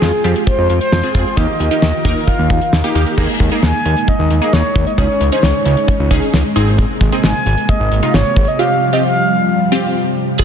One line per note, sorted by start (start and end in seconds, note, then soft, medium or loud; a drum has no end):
0.00 0.12 F2 loud
0.00 1.33 G#3 medium
0.00 0.19 C4 medium
0.00 0.19 F4 medium
0.00 1.35 F4 medium
0.00 0.19 G#4 medium
0.00 0.43 G#4 medium
0.00 3.14 G5 medium
0.00 snare loud
0.24 0.34 F2 loud
0.24 0.91 C4 medium
0.24 0.91 F4 medium
0.24 0.91 G4 medium
0.24 closed hi-hat medium
0.36 closed hi-hat soft
0.47 0.78 C5 loud
0.47 kick medium
0.47 closed hi-hat medium
0.58 0.68 F2 loud
0.70 0.80 F2 medium
0.70 closed hi-hat medium
0.80 1.12 C5 medium
0.80 closed hi-hat medium
0.92 1.02 F2 loud
0.92 snare loud
1.03 1.13 C4 medium
1.03 1.13 F4 medium
1.03 1.13 G#4 medium
1.14 1.25 F2 medium
1.14 1.34 C4 medium
1.14 1.34 F4 medium
1.14 1.34 G#4 medium
1.14 1.38 C5 medium
1.14 kick medium
1.14 closed hi-hat medium
1.26 closed hi-hat soft
1.36 1.47 D#2 loud
1.36 3.16 D#3 medium
1.36 1.66 A#3 medium
1.36 3.16 D#4 medium
1.36 1.66 D#4 medium
1.36 3.16 F4 medium
1.36 1.66 G4 medium
1.36 3.16 A#4 medium
1.36 2.29 D#5 loud
1.36 kick loud
1.36 closed hi-hat medium
1.60 1.70 D#2 medium
1.60 closed hi-hat medium
1.71 2.00 A#3 medium
1.71 2.00 D#4 medium
1.71 2.00 G4 medium
1.71 closed hi-hat medium
1.82 1.92 D#2 loud
1.82 snare loud
2.05 2.15 D#2 loud
2.05 2.72 A#3 medium
2.05 2.72 D#4 medium
2.05 2.72 A#4 loud
2.05 kick medium
2.05 closed hi-hat medium
2.16 closed hi-hat soft
2.27 2.72 F5 loud
2.27 kick medium
2.27 closed hi-hat medium
2.39 2.49 D#2 loud
2.50 2.60 D#2 loud
2.50 kick medium
2.50 closed hi-hat medium
2.61 closed hi-hat medium
2.73 2.83 D#2 medium
2.73 snare loud
2.84 2.93 A#3 medium
2.84 2.93 D#4 medium
2.84 2.94 G4 loud
2.95 3.05 D#2 medium
2.95 3.14 A#3 medium
2.95 3.14 D#4 medium
2.95 3.14 G4 loud
2.95 closed hi-hat medium
3.06 closed hi-hat soft
3.18 3.28 D#2 loud
3.18 8.55 G#3 medium
3.18 4.96 A#3 medium
3.18 3.47 A#3 medium
3.18 4.96 D#4 medium
3.18 3.47 D#4 medium
3.18 3.47 G#4 loud
3.18 kick loud
3.18 crash medium
3.40 3.50 D#2 loud
3.40 kick medium
3.40 closed hi-hat medium
3.52 4.28 A#3 medium
3.52 4.28 D#4 medium
3.52 4.28 G#4 medium
3.52 closed hi-hat medium
3.63 3.73 D#2 loud
3.63 4.10 G#5 loud
3.63 snare loud
3.85 3.95 D#2 loud
3.85 closed hi-hat medium
3.97 closed hi-hat soft
4.08 4.41 D#5 loud
4.08 kick medium
4.08 closed hi-hat medium
4.19 4.29 D#2 loud
4.30 4.40 D#2 loud
4.30 closed hi-hat medium
4.42 4.90 A#3 medium
4.42 4.90 D#4 medium
4.42 4.90 G#4 medium
4.42 4.55 D#5 medium
4.42 closed hi-hat medium
4.53 4.63 D#2 medium
4.53 4.86 C#5 loud
4.53 snare loud
4.76 4.85 D#2 medium
4.76 kick medium
4.76 closed hi-hat medium
4.87 4.92 D#5 medium
4.87 closed hi-hat soft
4.98 5.08 C#2 loud
4.98 6.54 C#4 medium
4.98 5.27 C#4 medium
4.98 6.54 D#4 medium
4.98 5.27 D#4 medium
4.98 5.27 G#4 medium
4.98 5.30 C#5 medium
4.98 kick loud
4.98 closed hi-hat medium
5.21 5.31 C#2 loud
5.21 closed hi-hat medium
5.32 5.99 C#4 medium
5.32 5.99 D#4 medium
5.32 5.99 G#4 medium
5.32 5.45 C5 medium
5.32 closed hi-hat medium
5.43 5.53 C#2 medium
5.43 6.33 C#5 medium
5.43 snare loud
5.66 5.76 C#2 loud
5.66 closed hi-hat medium
5.77 closed hi-hat soft
5.88 kick loud
5.88 closed hi-hat medium
6.00 6.10 C#2 loud
6.11 6.21 C#2 loud
6.11 6.56 C#4 medium
6.11 6.55 D#4 medium
6.11 6.55 G#4 loud
6.11 kick medium
6.11 closed hi-hat medium
6.22 closed hi-hat medium
6.33 6.43 C#2 medium
6.33 snare loud
6.56 6.86 G#1 medium
6.56 10.36 C3 medium
6.56 8.57 A#3 medium
6.56 7.04 C4 loud
6.56 7.04 D#4 medium
6.56 7.04 G#4 loud
6.56 closed hi-hat medium
6.67 closed hi-hat soft
6.78 kick loud
6.78 closed hi-hat medium
7.01 7.11 G#1 loud
7.01 kick medium
7.01 closed hi-hat medium
7.12 7.89 C4 medium
7.12 7.89 D#4 medium
7.12 7.89 G#4 medium
7.12 closed hi-hat medium
7.24 7.34 G#1 loud
7.24 7.71 G#5 loud
7.24 snare loud
7.46 7.56 G#1 loud
7.46 closed hi-hat medium
7.58 closed hi-hat soft
7.69 8.02 D#5 loud
7.69 kick loud
7.69 closed hi-hat medium
7.80 7.90 G#1 loud
7.91 8.01 G#1 loud
7.91 closed hi-hat medium
8.03 8.51 C3 medium
8.03 8.51 D#4 medium
8.03 8.51 F4 medium
8.03 8.13 D#5 medium
8.03 closed hi-hat medium
8.14 8.24 G#1 medium
8.14 8.49 C#5 loud
8.14 snare loud
8.37 8.46 G#1 loud
8.37 kick medium
8.37 open hi-hat medium
8.48 8.61 D#5 medium
8.48 closed hi-hat soft
8.59 10.38 F3 medium
8.59 10.38 G3 medium
8.59 8.88 C4 medium
8.59 8.88 F4 medium
8.59 8.88 G4 medium
8.59 8.95 F5 loud
8.93 9.60 C4 medium
8.93 9.60 F4 medium
8.93 9.60 G4 medium
8.93 9.04 D#5 medium
9.04 9.90 F5 medium
9.72 10.29 C4 medium
9.72 10.29 F4 medium
9.72 10.29 G4 loud
10.39 10.44 F1 loud
10.39 10.44 F3 medium
10.39 10.44 G#3 medium
10.39 10.44 C4 medium
10.39 10.44 F4 medium
10.39 10.44 G#4 loud
10.39 kick loud
10.39 crash loud